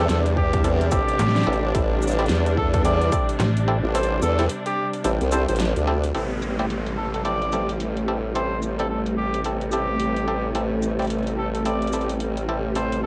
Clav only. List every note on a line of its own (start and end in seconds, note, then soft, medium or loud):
0.64 0.89 C4 medium
0.64 0.89 E4 medium
0.64 0.89 G4 medium
0.64 0.89 A4 medium
0.92 1.44 C4 medium
0.92 1.44 E4 medium
0.92 1.44 G4 medium
0.92 1.44 A4 medium
1.47 1.57 C4 medium
1.47 1.57 E4 medium
1.47 1.57 G4 medium
1.47 1.57 A4 medium
1.75 2.15 C4 medium
1.75 2.15 E4 medium
1.75 2.15 G4 medium
1.75 2.15 A4 medium
2.19 2.25 C4 medium
2.19 2.25 E4 medium
2.19 2.25 G4 medium
2.19 2.25 D5 loud
2.85 3.10 C4 medium
2.85 3.10 E4 medium
2.85 3.10 G4 medium
2.85 3.10 A4 medium
3.12 3.65 C4 medium
3.12 3.65 E4 medium
3.12 3.65 G4 medium
3.12 3.65 A4 medium
3.68 3.77 C4 medium
3.68 3.77 E4 medium
3.68 3.77 G4 medium
3.68 3.77 A4 medium
3.95 4.35 C4 medium
3.95 4.35 E4 medium
3.95 4.35 G4 medium
3.95 4.35 A4 medium
4.39 4.46 C4 loud
4.39 4.45 E4 medium
4.39 4.45 G4 medium
4.39 4.45 D5 loud
5.04 5.30 C4 medium
5.04 5.30 E4 medium
5.04 5.30 G4 medium
5.04 5.30 A4 medium
5.32 5.85 C4 medium
5.32 5.85 E4 medium
5.32 5.85 G4 medium
5.32 5.85 A4 medium
5.87 5.97 C4 medium
5.87 5.97 E4 medium
5.87 5.97 G4 medium
5.87 5.97 A4 medium
6.15 6.55 C4 medium
6.15 6.55 E4 medium
6.15 6.55 G4 medium
6.15 6.55 A4 medium
6.59 6.66 C4 medium
6.59 6.66 E4 medium
6.59 6.66 G4 medium
6.59 6.66 D5 medium
7.25 7.50 C4 medium
7.25 7.50 E4 medium
7.25 7.50 G4 medium
7.25 7.50 A4 medium
7.53 8.05 C4 medium
7.53 8.05 E4 medium
7.53 8.05 G4 medium
7.53 8.05 A4 medium
8.08 8.18 C4 medium
8.08 8.18 E4 medium
8.08 8.18 G4 medium
8.08 8.18 A4 medium
8.36 8.76 C4 medium
8.36 8.76 E4 medium
8.36 8.76 G4 medium
8.36 8.76 A4 medium
8.80 8.86 C4 medium
8.80 8.86 E4 medium
8.80 8.86 G4 medium
8.80 8.86 D5 loud
9.46 9.70 C4 medium
9.46 9.71 E4 medium
9.46 9.71 G4 medium
9.46 9.70 A4 medium
9.73 10.25 C4 medium
9.73 10.25 E4 medium
9.73 10.25 G4 medium
9.73 10.25 A4 medium
10.28 10.38 C4 medium
10.28 10.38 E4 medium
10.28 10.38 G4 medium
10.28 10.38 A4 medium
10.55 10.96 C4 medium
10.55 10.96 E4 medium
10.55 10.96 G4 medium
10.55 10.96 A4 medium
11.00 11.06 C4 medium
11.00 11.06 E4 medium
11.00 11.06 G4 medium
11.00 11.06 D5 loud
11.66 11.91 C4 medium
11.66 11.91 E4 medium
11.66 11.91 G4 medium
11.66 11.91 A4 medium
11.94 12.46 C4 medium
11.94 12.46 E4 medium
11.94 12.46 G4 medium
11.94 12.46 A4 medium
12.49 12.58 C4 medium
12.49 12.58 E4 medium
12.49 12.58 G4 medium
12.49 12.58 A4 medium
12.76 13.06 C4 medium
12.76 13.06 E4 medium
12.76 13.06 G4 medium
12.76 13.06 A4 medium